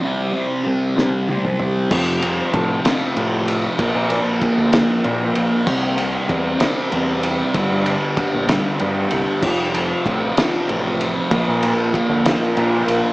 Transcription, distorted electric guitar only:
X:1
M:6/8
L:1/8
Q:3/8=64
K:F
V:1 name="Distorted electric guitar" clef=bass
[C,G,C] [G,C] [C,G,C] [C,G,C] [C,G,C]2 | [F,,C,F,] [C,F,] [F,,C,F,] [F,,C,F,] [F,,C,F,]2 | [B,,F,B,] [F,B,] [B,,F,B,] [B,,F,B,] [B,,F,B,]2 | [C,G,C] [G,C] [C,G,C] [C,G,C] [C,G,C]2 |
[G,,D,G,] [D,G,] [G,,D,G,] [G,,D,G,] [G,,D,G,]2 | [F,,C,F,] [C,F,] [F,,C,F,] [F,,C,F,] [F,,C,F,]2 | [B,,F,B,] [F,B,] [B,,F,B,] [B,,F,B,] [B,,F,B,]2 |]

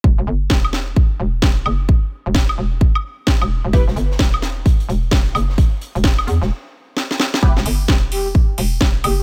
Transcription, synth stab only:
X:1
M:4/4
L:1/8
Q:"Swing 16ths" 1/4=130
K:Em
V:1 name="Synth stab"
z8 | z8 | [B,EGB] z6 z | z8 |
[B,EGB] z6 z |]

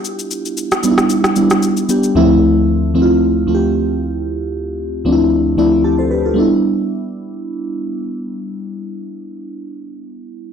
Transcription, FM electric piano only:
X:1
M:4/4
L:1/16
Q:"Swing 16ths" 1/4=114
K:Ephr
V:1 name="FM electric piano"
z16 | z16 | z8 z2 d2 [EGa] [Ac] [GB] [FA]- | [FA] z12 z3 |
z16 |]
V:2 name="FM electric piano"
z6 [G,B,D^DE]4 [G,B,=DE]4 [G,B,DG]2 | [D,,F,A,CE]4 z2 [D,,F,A,CEF]4 [D,,F,A,CFG]6 | z6 [D,,F,A,CDE]4 [D,,F,A,CE]4 z2 | [G,B,DE]16- |
[G,B,DE]16 |]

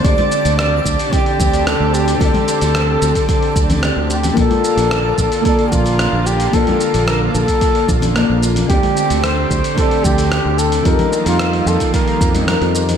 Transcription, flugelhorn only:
X:1
M:4/4
L:1/16
Q:1/4=111
K:Bb
V:1 name="Flugelhorn"
d4 d4 G4 A2 G2 | A8 A4 z2 G2 | A8 A2 F4 G2 | A4 B2 A6 z4 |
G4 c4 A2 G4 A2 | B3 F3 A2 B6 z2 |]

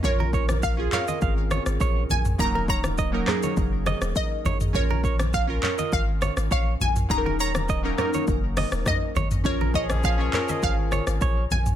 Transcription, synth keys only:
X:1
M:4/4
L:1/16
Q:1/4=102
K:Bbm
V:1 name="Synth keys"
[DFB]4 z [DFA] [CDFB]6- [CDFB] z3 | [F,G,B,DEB]4 z [G,B,DEB] [G,B,DEA]6- [G,B,DEA] z3 | [DFB]4 z [DFB] [DFB]6- [DFB] z3 | [G,B,DEAB]4 z [G,B,DEB] [G,B,DEB]6- [G,B,DEB] z3 |
[DFB]4 z [DFd] [DFB]6- [DFB] z3 |]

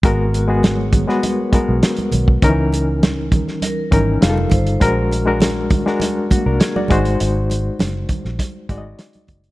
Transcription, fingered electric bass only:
X:1
M:4/4
L:1/16
Q:1/4=100
K:G#m
V:1 name="Fingered electric bass" clef=bass
G,,,6- G,,, z4 B,,, z2 B,,,2 | C,,6- C,, z3 G,,,2 =F,,,2 =G,,,2 | A,,,6- A,,, z4 ^B,,, z2 G,,,2 | G,,,4 F,,,2 z A,,, z2 G,,,2 z2 F,,,2 |]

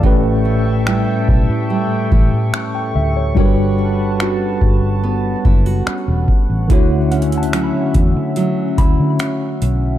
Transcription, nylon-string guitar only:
X:1
M:4/4
L:1/16
Q:1/4=72
K:D
V:1 name="Nylon-string guitar"
A,,2 C2 [G,CE]4 G,2 E2 C4 | G,2 C2 [B,CF]4 B,2 E F C4 | D,2 C2 [F,CE]4 F,2 E2 C4 |]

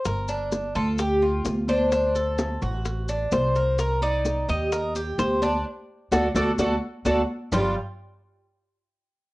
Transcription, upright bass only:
X:1
M:4/4
L:1/8
Q:1/4=128
K:Gm
V:1 name="Upright bass" clef=bass
G,,,3 D,,3 D,,2- | D,,3 A,,,3 C,,2- | C,,3 E,,3 D,,2 | z2 D,, D,, D,, z D,, z |
G,,, z6 z |]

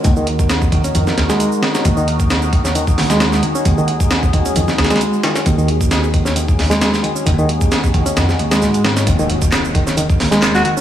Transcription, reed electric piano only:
X:1
M:4/4
L:1/16
Q:"Swing 16ths" 1/4=133
K:Ebm
V:1 name="Reed electric piano" clef=bass
E, E, z4 E, D E, z2 A,3 E, D | E, E, z4 E, D E, z2 A,3 E, D | E, E, z4 E, D E, z2 A,3 E, D | E, E, z4 E, D E, z2 A,3 E, D |
E, E, z4 E, D E, z2 A,3 E, D | E, E, z4 E, D E, z2 A,3 E, D |]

